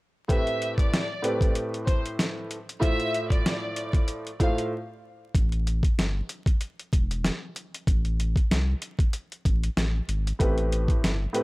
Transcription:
0.28 A2 A3 C4 G4 B4 E5, kick, closed hi-hat
0.47 closed hi-hat
0.62 closed hi-hat
0.77 D5, kick, closed hi-hat
0.94 snare, closed hi-hat
1.22 A2 A3 C4 G4 B4, closed hi-hat
1.41 kick, closed hi-hat
1.55 closed hi-hat
1.74 closed hi-hat
1.86 C5, kick, closed hi-hat
2.06 closed hi-hat
2.19 snare, closed hi-hat
2.51 closed hi-hat
2.69 closed hi-hat
2.80 A2 A3 E4 F4 C5 E5, kick, closed hi-hat
3.00 closed hi-hat
3.14 closed hi-hat
3.30 D5, kick, closed hi-hat
3.46 snare, closed hi-hat
3.76 closed hi-hat
3.93 kick, closed hi-hat
4.08 closed hi-hat
4.27 closed hi-hat
4.40 A2 A3 E4 F4 C5 F5, kick, closed hi-hat
4.58 closed hi-hat
5.35 A1, kick, closed hi-hat
5.52 closed hi-hat
5.67 closed hi-hat
5.83 kick, closed hi-hat
5.98 G1, snare, closed hi-hat
6.29 closed hi-hat
6.46 kick, closed hi-hat
6.61 closed hi-hat
6.79 closed hi-hat
6.93 E1, kick, closed hi-hat
7.11 closed hi-hat
7.25 snare, closed hi-hat
7.56 closed hi-hat
7.74 closed hi-hat
7.87 A1, kick, closed hi-hat
8.05 closed hi-hat
8.20 closed hi-hat
8.36 kick, closed hi-hat
8.50 C2, snare, closed hi-hat
8.82 closed hi-hat
8.99 kick, closed hi-hat
9.13 closed hi-hat
9.32 closed hi-hat
9.45 A1, kick, closed hi-hat
9.64 closed hi-hat
9.77 A1, snare, closed hi-hat
10.08 G#1, closed hi-hat
10.27 closed hi-hat
10.39 A1 A2 A3 C4 G4 B4, kick, closed hi-hat
10.58 closed hi-hat
10.72 closed hi-hat
10.88 kick, closed hi-hat
11.03 G1, snare, closed hi-hat
11.33 A2 A3 C4 G4 B4, closed hi-hat

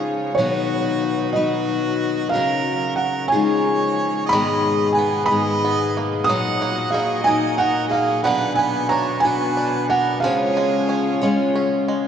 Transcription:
Already playing: C#3 F3 G#3 D#4 F4 G#4 C#5 F5
0.33 F#4 C#5
0.38 B2 D#3 F#3 B3 D#4 B4
1.32 D#4 F#4 B4 D#5
1.36 B2 D#3 F#3 B3
2.29 A#4 F5
2.34 C#3 F#3 C#4 F#4 A#4
2.96 A#4 F#5
3.28 C#5 G#5
3.32 C#3 F3 G#3 D#4 F4 G#4 C#5
4.26 D#5 B5
4.32 G#2 B2 D#3 G#3 B3 G#4
4.92 B4 G#5
4.98 B3
5.25 D#5 B5
5.31 G#2 D#3 G#3 B3 G#4
5.65 B3
5.97 A#3
6.24 A#2 F#5 D#6
6.29 A#2 F#3 A#3 D#4 F#4 A#4 D#5
6.62 A#3
6.90 G#4 F5
6.94 D#4
7.23 D#4 A#4 D#5 G#5
7.28 A#2 F#3 A#3
7.57 D#4 A#4 F#5
7.88 G#4 F5
7.93 A#3
8.23 B2 D3 F#3 B3 D4 F#4 B4 F#5
8.27 F#4 B4
8.55 B4 G#5
8.59 B3
8.88 D4 C#5 A#5
9.20 B4 G#5
9.25 B2 F#3 B3 D4 F#4
9.57 D4
9.88 B3 A#4 F#5
10.20 C#3 G#3 C#4 G#4 F5
10.24 F3 F4 C#5
10.57 G#3
10.89 C#4
11.22 C#3 G#3 C#4 F4 C#5
11.56 C#4
11.88 G#3

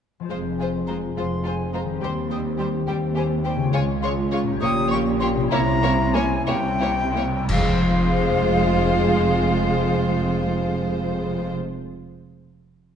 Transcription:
0.20 F3 G#3 F4
0.25 F2 C4 C5
0.29 F1 G#3 F4 G#4 C5 F5
0.58 G#3 F4 C5 G#5
0.87 G#3 F4 C5 A#5
1.16 F1 F2 G#3 F4 C5 C6
1.44 G#3 F4 C5 G#5
1.72 G#3 F4 C5 A#5
1.84 D#3
1.89 G3
1.93 G4
1.98 G3 G4 C5
2.02 D#2 G4 C5 C6
2.30 G3 G4 C5 D#6
2.58 G3 G4 C5 C6
2.87 D#2 G3 G4 C5 G5
3.16 G3 G4 C5 G#5
3.43 G3 G4 C5 G5
3.55 C#3
3.60 G#3
3.64 F4
3.69 C#5
3.73 C#2 G#3 C#4 F4 C#5 G#5
4.02 G#3 F4 C#5 C6
4.32 G#3 F4 C#5 C#6
4.43 A#2
4.48 A#3
4.52 G4
4.57 A#1 G4 C#5
4.61 A#2 A#3 G4 C#5 D#6
4.90 A#3 G4 C#5 C#6
5.20 A#3 G4 C#5 C6
5.34 C3
5.38 A#3
5.43 E4
5.47 C3 E4 C#5 A#5
5.51 C2 A#3 E4 C#5
5.83 A#3 E4 C#5
6.14 A#3 E4 C#5 G#5
6.46 C2 C3 A#3 E4 C#5 G5
6.80 A#3 E4 C#5
7.14 A#3 E4 C#5
7.48 F1 F2 F3 G#3 C4 F4 G#4 C5 F5, concert bass drum, crash
7.57 G#3
7.64 F4
7.71 C5
7.78 F5

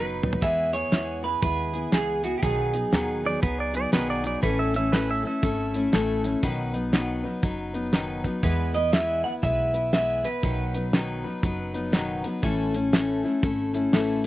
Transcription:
Already playing: F#1 F#3 B3 D#4 B4
0.23 F#3 B3 D#4 B4, floor tom
0.33 floor tom
0.42 E2 E3 G#3 B3 E4 G#4 E5, kick, closed hi-hat
0.73 B3 E4 G#4 C#5, closed hi-hat
0.92 E2 E3 G#3 B3 E4 G#4, snare, closed hi-hat
1.23 B3 E4 G#4 B4
1.42 D#2 G#3 B3 E4 G#4 B4, kick, closed hi-hat
1.73 B3 E4 G#4, closed hi-hat
1.92 C#2 E3 G#3 B3 E4 G#4, snare, closed hi-hat
2.23 B3 E4 F#4 G#4, closed hi-hat
2.38 G4
2.42 B1 B2 D#3 F#3 B3 D#4 G#4, kick, closed hi-hat
2.73 F#3 B3 D#4 G#4, closed hi-hat
2.92 D#2 B2 D#3 F#3 B3 D#4 G#4, snare, closed hi-hat
3.23 F#3 B3 D#4 G#4 D5
3.42 C#2 F#3 B3 D#4 G#4 B4, kick, closed hi-hat
3.60 D5
3.73 F#3 B3 D#4 G#4 D5, closed hi-hat
3.92 B1 B2 D#3 F#3 B3 D#4 G#4 B4, snare, closed hi-hat
4.10 D5
4.23 F#3 B3 D#4 G#4 D5, closed hi-hat
4.42 A1 A2 E3 A3 C#4 E4 A4 B4, kick, closed hi-hat
4.59 E5
4.74 A3 C#4 E4 A4 E5, closed hi-hat
4.92 A2 E3 A3 C#4 E4 A4 B4, snare, closed hi-hat
5.11 E5
5.23 A3 C#4 E4 A4 E5
5.42 G#1 A3 C#4 E4 A4, kick, closed hi-hat
5.73 A3 C#4 E4 A4, closed hi-hat
5.92 A1 A2 E3 A3 C#4 E4 A4, snare, closed hi-hat
6.23 A3 C#4 E4 A4, closed hi-hat
6.43 B1 B2 D#3 F#3 B3 D#4 B4, kick, closed hi-hat
6.73 F#3 B3 D#4 B4, closed hi-hat
6.92 B2 D#3 F#3 B3 D#4 B4, snare, closed hi-hat
7.23 F#3 B3 D#4 B4
7.42 F#1 F#3 B3 D#4 B4, kick, closed hi-hat
7.73 F#3 B3 D#4 B4, closed hi-hat
7.93 B2 D#3 F#3 B3 D#4 B4, snare, closed hi-hat
8.24 F#3 B3 D#4 B4, kick, closed hi-hat
8.43 E2 E3 G#3 B3 E4 B4, kick, closed hi-hat
8.74 B3 E4 B4 D#5, closed hi-hat
8.92 E3 G#3 B3 E4 B4 E5, snare, closed hi-hat
9.24 B3 E4 B4 F#5
9.42 B1 G#3 B3 E4 B4 E5, kick, closed hi-hat
9.74 B3 E4 B4, closed hi-hat
9.93 E3 G#3 B3 E4 B4 E5, snare, closed hi-hat
10.24 B3 E4 B4, closed hi-hat
10.43 B1 B2 D#3 F#3 B3 D#4 B4, kick, closed hi-hat
10.74 F#3 B3 D#4 B4, closed hi-hat
10.93 B2 D#3 F#3 B3 D#4 B4, snare, closed hi-hat
11.24 F#3 B3 D#4 B4
11.43 F#1 F#3 B3 D#4 B4, kick, closed hi-hat
11.74 F#3 B3 D#4 B4, closed hi-hat
11.92 B2 D#3 F#3 B3 D#4 B4, snare, closed hi-hat
12.23 F#3 B3 D#4 B4, closed hi-hat
12.42 A1 A2 E3 A3 C#4 E4 A4, kick, closed hi-hat
12.74 A3 C#4 E4 A4, closed hi-hat
12.92 A2 E3 A3 C#4 E4 A4, snare, closed hi-hat
13.23 A3 C#4 E4 A4
13.42 G#1 A3 C#4 E4 A4, kick, closed hi-hat
13.73 A3 C#4 E4 A4, closed hi-hat
13.93 A1 A2 E3 A3 C#4 E4 A4, snare, closed hi-hat
14.24 A4

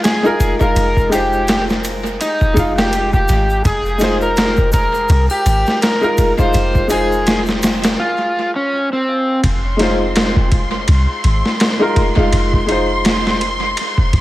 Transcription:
Already playing: G#3 D#4 F4 C5
0.04 G#4, snare, ride, shaker
0.23 G#3 D#4 F4 A#4, shaker
0.40 kick, ride, shaker
0.59 G#3 D#4 F4 A#4 F5, kick, shaker
0.76 F1, ride, shaker
0.97 kick, shaker
1.09 G#3 D#4 F4 G4, ride, shaker
1.15 C5
1.33 shaker
1.48 snare, ride, shaker
1.69 snare, shaker
1.84 ride, shaker
2.06 shaker
2.21 D#4, ride, shaker
2.41 kick, shaker
2.54 F1 G#3 D#4 F4, kick, ride, shaker
2.59 F5
2.78 G4, snare, shaker
2.93 ride, shaker
3.13 G4, kick, shaker
3.28 G#1, ride, shaker
3.50 shaker
3.65 F1 G#4, kick, ride, shaker
3.86 shaker
3.98 G#3 D#4 F4, ride, shaker
4.02 C5, snare
4.21 A#4, shaker
4.37 snare, ride, shaker
4.57 kick, shaker
4.72 A#4, kick, ride, shaker
4.94 shaker
5.09 C2, ride, shaker
5.30 G4, triangle, shaker
5.46 G#1, ride, triangle, shaker
5.66 snare, shaker
5.82 A#4, snare, ride, shaker
6.01 G#3 D#4 F4 A#4, shaker
6.18 kick, ride, shaker
6.37 G#3 D#4 F4 C5 F5, kick, shaker
6.53 F1, ride, shaker
6.75 kick, shaker
6.87 G#3 D#4 F4 G#4, ride, triangle, shaker
6.93 C5
7.12 shaker
7.26 snare, ride, shaker
7.46 snare, shaker
7.63 snare, ride, shaker
7.84 snare, ride, shaker
8.00 F4
8.56 C#4
8.93 C4
9.44 F1 C6, kick, ride
9.77 G#3 D#4 F4, snare, ride
9.83 C5
10.16 snare, ride
10.36 kick
10.52 kick, ride
10.88 C2, ride
11.24 G#1, ride
11.46 snare
11.60 snare, ride
11.79 G#3 D#4 F4 A#4
11.96 kick, ride
12.16 G#3 D#4 F4 F5, kick
12.33 F1, ride
12.53 kick
12.66 G#3 D#4 F4, ride
12.72 C5
13.05 snare, ride
13.27 snare
13.41 ride
13.77 ride
13.98 kick
14.13 F1, kick, ride

